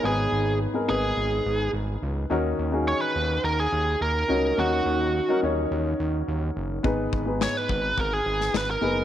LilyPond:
<<
  \new Staff \with { instrumentName = "Lead electric guitar" } { \time 4/4 \key ees \minor \tempo 4 = 106 aes'4 r8 aes'4. r4 | r4 des''16 ces''8. bes'16 aes'8. bes'4 | ges'4. r2 r8 | r4 des''16 ces''8. bes'16 aes'8. ces''16 bes'8. | }
  \new Staff \with { instrumentName = "Grand piano" } { \time 4/4 \key ees \minor <ces' ees' aes' ces''>4 r16 <ces' ees' aes' bes'>16 <ces' ees' aes' ces''>4. r4 | <des' ees' ges' bes'>8 r16 <des' ees' ges' aes'>4. r4 r16 <des' ees' ges' bes'>8 | <des' ees' ges' bes'>4 r16 <des' ees' ges' bes'>16 <des' ees' ges' des''>4. r4 | <ces' ees' aes' ces''>8 r16 <ces' ees' aes' ces''>4. r4 r16 <ces' ees' aes' ces''>8 | }
  \new Staff \with { instrumentName = "Grand piano" } { \clef bass \time 4/4 \key ees \minor aes,4. r2 r8 | ees4. r2 r8 | ees4. r2 r8 | aes,4. r2 r8 | }
  \new Staff \with { instrumentName = "Analog synth bass" } { \clef bass \time 4/4 \key ees \minor aes,,8 aes,,8. r16 aes,,8 aes,,8 aes,,8 aes,,8 des,8 | ees,8 ees,8. r16 ees,8 ees,8 ees,8 ees,8 des,8 | ees,8 ees,8. r16 ees,8 ees,8 ees,8 ees,8 ges,,8 | aes,,8 aes,,8. r16 aes,,8 aes,,8 aes,,8 aes,,8 ges,,8 | }
  \new DrumStaff \with { instrumentName = "Drums" } \drummode { \time 4/4 r4 r4 r4 r4 | r4 r4 r4 r4 | r4 r4 r4 r4 | bd8 bd8 sn8 bd8 bd8. sn16 sn4 | }
>>